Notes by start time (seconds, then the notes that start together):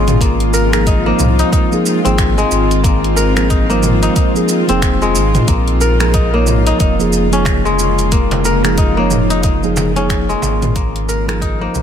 Already playing: G#1 C#3 G#3 A#3 C#4 D#4 F4
0.08 closed hi-hat, mid tom, shaker
0.21 D#3 A#3 C4, kick, closed hi-hat, shaker
0.40 closed hi-hat
0.54 A#4, shaker
0.73 F3 A#3 D#4 G#4 A#4, finger snap, closed hi-hat, shaker
0.87 D#4, kick, closed hi-hat, shaker
1.05 F3 A#3 D#4 C5
1.19 C2, mid tom, shaker
1.39 D#4, closed hi-hat, shaker
1.52 D#4, kick, closed hi-hat, shaker
1.72 F3 A#3 D#4 G#4, shaker
1.86 shaker
2.05 G#1 F3 A#3 C4 D#4 G#4, closed hi-hat, shaker
2.18 finger snap, kick, closed hi-hat, shaker
2.38 G#3, shaker
2.51 G#1, shaker
2.71 closed hi-hat, shaker
2.84 A#3, kick, closed hi-hat, shaker
3.04 closed hi-hat
3.16 A#4, shaker
3.36 F3 A#3 D#4 G#4 A#4, finger snap, closed hi-hat, shaker
3.50 D#4, kick, closed hi-hat, shaker
3.69 F3 A#3 D#4 C5, shaker
3.83 mid tom, shaker
4.03 D#4, closed hi-hat, shaker
4.16 D#4, kick, closed hi-hat, shaker
4.34 F3 A#3 D#4 G#4, shaker
4.49 shaker
4.67 F1 F3 A#3 C4 D#4 G#4, closed hi-hat, shaker
4.82 finger snap, kick, closed hi-hat, shaker
5.02 G#3, shaker
5.15 G#1, shaker
5.35 closed hi-hat, mid tom, shaker
5.48 A#1 C#3 A#3, kick, closed hi-hat, shaker
5.68 closed hi-hat
5.81 A#4, shaker
6.00 F3 A#3 D#4 G#4 A#4, finger snap, closed hi-hat, shaker
6.14 D#4, kick, closed hi-hat, shaker
6.33 F3 A#3 D#4 C#5
6.47 mid tom, shaker
6.67 D#4, closed hi-hat, shaker
6.80 F1 D#4, kick, closed hi-hat, shaker
6.99 F3 A#3 D#4 G#4, shaker
7.13 shaker
7.31 F3 A#3 C#4 D#4 G#4, closed hi-hat, shaker
7.45 finger snap, kick, closed hi-hat, frame drum, shaker
7.65 G#3, shaker
7.79 shaker
7.99 closed hi-hat, shaker
8.12 A#3, kick, closed hi-hat, shaker
8.31 closed hi-hat, frame drum
8.45 A#4, shaker
8.64 F3 A#3 D#4 G#4 A#4, finger snap, closed hi-hat, shaker
8.78 D#4, kick, closed hi-hat, shaker
8.97 F3 A#3 D#4 C#5
9.11 mid tom, shaker
9.30 D#4, closed hi-hat, shaker
9.43 D#4, kick, closed hi-hat, shaker
9.63 F3 A#3 D#4 G#4, shaker
9.77 frame drum, shaker
9.96 F3 A#3 C#4 D#4 G#4, closed hi-hat, shaker
10.10 finger snap, kick, closed hi-hat, shaker
10.29 G#3, shaker
10.42 G#1, frame drum, shaker
10.62 closed hi-hat, mid tom, shaker
10.76 D#3 G#3 A#3 C4 F4, kick, closed hi-hat, shaker
10.96 closed hi-hat
11.09 A#4, shaker
11.28 F3 A#3 D#4 G#4 A#4, finger snap, closed hi-hat, shaker
11.41 D#4, kick, closed hi-hat, shaker
11.60 F3 A#3 D#4 C5
11.75 C2, mid tom, shaker